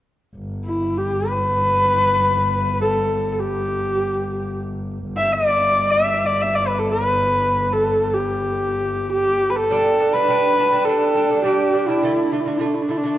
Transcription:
0.36 5.05 G1 medium
0.66 0.99 E4 medium
0.97 1.31 G4 medium
1.29 2.81 B4 medium
2.81 3.32 A4 medium
3.32 3.42 A4 soft
3.40 4.61 G4 medium
5.05 9.77 G1 medium
5.17 5.34 E5 medium
5.32 5.92 D5 medium
5.90 6.27 E5 medium
6.26 6.43 D5 medium
6.41 6.56 E5 medium
6.55 6.68 D5 medium
6.67 6.80 B4 medium
6.79 6.90 A4 medium
6.90 7.74 B4 medium
7.72 8.15 A4 medium
8.13 9.11 G4 medium
9.12 9.51 G4 medium
9.50 9.57 B4 medium
9.56 10.15 A4 medium
9.70 9.94 G3 medium
9.70 9.95 D4 medium
9.99 10.12 G3 medium
9.99 10.13 D4 medium
10.13 10.26 G3 medium
10.13 10.27 D4 medium
10.13 10.86 B4 loud
10.28 10.52 G3 medium
10.28 10.53 D4 medium
10.58 10.70 G3 medium
10.58 10.71 D4 medium
10.72 10.84 G3 medium
10.72 10.85 D4 medium
10.85 11.11 G3 medium
10.85 11.44 A4 medium
10.89 11.11 D4 medium
11.15 11.27 G3 medium
11.15 11.28 D4 medium
11.30 11.42 G3 medium
11.30 11.43 D4 medium
11.44 11.68 G3 medium
11.44 11.69 D4 medium
11.44 11.89 G4 medium
11.73 11.86 G3 medium
11.73 11.86 D4 medium
11.87 12.00 G3 medium
11.87 12.01 D4 medium
11.87 12.34 E4 medium
12.03 12.26 D3 medium
12.03 12.27 A3 medium
12.32 12.44 D3 medium
12.32 12.45 A3 medium
12.32 12.42 D4 medium
12.40 12.50 E4 medium
12.46 12.58 D3 medium
12.46 12.59 A3 medium
12.46 12.59 D4 medium
12.57 12.84 D3 medium
12.57 12.85 A3 medium
12.57 12.67 E4 medium
12.66 12.76 D4 medium
12.74 12.84 E4 medium
12.82 12.92 D4 medium
12.89 13.01 D3 medium
12.89 13.02 A3 medium
12.89 12.99 E4 medium
12.97 13.18 D4 medium
13.04 13.16 D3 medium
13.04 13.17 A3 medium

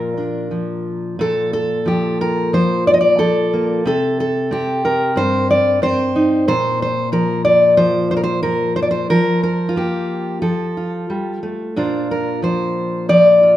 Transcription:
0.00 1.15 A#2 medium
0.00 0.50 F3 soft
0.00 1.15 F4 soft
0.00 1.20 A#4 medium
0.18 1.15 D4 soft
0.51 1.84 F3 soft
1.19 3.82 A#2 medium
1.19 1.52 A4 medium
1.53 2.53 A4 medium
1.86 2.52 F3 medium
1.86 2.20 G4 medium
2.21 2.53 A#4 medium
2.53 3.17 F3 medium
2.53 2.87 C5 loud
2.87 2.93 D5 loud
2.94 3.00 D#5 medium
3.01 3.86 D5 medium
3.18 3.85 F3 medium
3.18 3.85 A4 medium
3.53 3.86 A#3 soft
3.85 5.17 C3 medium
3.85 4.19 A4 loud
4.20 4.84 A4 medium
4.51 5.81 C4 medium
4.51 5.17 G4 medium
4.85 5.83 A#4 medium
5.16 6.47 G2 medium
5.16 5.50 C5 loud
5.51 5.82 D5 medium
5.82 6.51 C4 medium
5.82 6.47 C5 loud
6.16 6.44 D#4 soft
6.48 9.06 A#2 medium
6.48 6.81 C5 loud
6.82 7.12 C5 medium
7.12 7.77 F3 medium
7.12 7.44 A#4 medium
7.45 7.77 D5 medium
7.77 8.44 F3 medium
7.77 8.10 C5 loud
8.11 8.16 C5 medium
8.17 8.23 A#4 medium
8.24 8.42 C5 loud
8.43 9.10 F3 medium
8.43 8.76 A#4 medium
8.76 8.82 C5 medium
8.82 8.90 D5 medium
8.91 9.10 C5 medium
9.10 10.41 F3 medium
9.10 9.42 A#4 loud
9.43 9.76 A#4 medium
9.69 10.42 F4 medium
9.76 10.42 A#3 soft
9.76 10.41 G4 medium
10.42 11.09 F3 medium
10.42 11.76 A4 medium
10.77 11.73 F4 soft
11.10 11.42 G3 medium
11.43 11.76 A3 medium
11.76 13.57 A#2 medium
11.76 13.57 D4 medium
11.76 13.42 F4 soft
11.76 12.11 C5 soft
12.11 12.43 A#4 medium
12.42 13.08 F3 medium
12.42 13.09 C5 medium
13.09 13.57 F3 medium
13.09 13.57 D5 loud
13.43 13.57 F4 soft

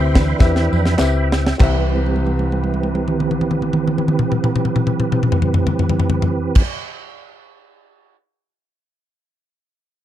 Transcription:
0.00 0.32 D2 loud
0.00 0.12 C3 medium
0.00 0.28 C4 medium
0.00 0.27 E4 medium
0.00 0.28 G4 medium
0.00 0.28 B4 medium
0.00 0.39 E5 medium
0.00 0.28 G5 medium
0.00 0.39 G5 medium
0.00 0.37 B5 medium
0.00 0.43 C6 medium
0.14 0.94 E3 medium
0.14 0.95 D4 medium
0.14 0.94 B4 medium
0.14 kick medium
0.14 snare loud
0.14 ride medium
0.14 tambourine medium
0.39 0.68 E2 loud
0.39 0.85 C4 medium
0.39 0.85 E4 medium
0.39 0.85 G4 medium
0.39 0.85 B4 medium
0.39 0.85 E5 medium
0.39 1.56 E5 medium
0.39 1.57 G5 medium
0.39 1.29 B5 medium
0.39 kick loud
0.39 snare medium
0.39 tambourine medium
0.56 snare medium
0.72 0.95 F2 medium
0.72 tambourine soft
0.86 snare medium
0.97 1.51 C#2 medium
0.97 1.46 C4 medium
0.97 1.46 E4 medium
0.97 1.46 G4 medium
0.97 1.46 B4 medium
0.97 1.46 E5 medium
0.97 snare loud
0.97 clap loud
0.97 tambourine loud
1.32 snare loud
1.32 tambourine medium
1.47 snare medium
1.58 6.63 C2 medium
1.58 6.63 C2 loud
1.58 6.63 E3 medium
1.58 6.62 C4 medium
1.58 6.63 C4 medium
1.58 6.63 G4 medium
1.58 6.62 B4 medium
1.58 6.63 B4 medium
1.58 6.64 E5 medium
1.58 kick loud
1.58 clap medium
1.58 crash medium
1.96 high tom soft
2.06 high tom soft
2.16 high tom soft
2.27 high tom medium
2.39 high tom medium
2.52 high tom medium
2.64 high tom medium
2.74 high tom medium
2.83 high tom medium
2.95 high tom medium
3.08 mid tom medium
3.20 mid tom medium
3.31 mid tom medium
3.41 mid tom medium
3.51 mid tom medium
3.62 mid tom medium
3.73 mid tom medium
3.88 mid tom medium
3.98 mid tom medium
4.08 mid tom medium
4.19 mid tom medium
4.32 mid tom medium
4.44 mid tom medium
4.56 mid tom medium
4.65 mid tom medium
4.76 mid tom medium
4.87 mid tom medium
5.00 mid tom medium
5.12 mid tom medium
5.23 mid tom medium
5.32 floor tom medium
5.42 floor tom medium
5.54 floor tom medium
5.67 floor tom medium
5.79 floor tom medium
5.90 floor tom medium
6.00 floor tom medium
6.10 floor tom loud
6.22 floor tom loud
6.55 kick loud
6.55 crash loud

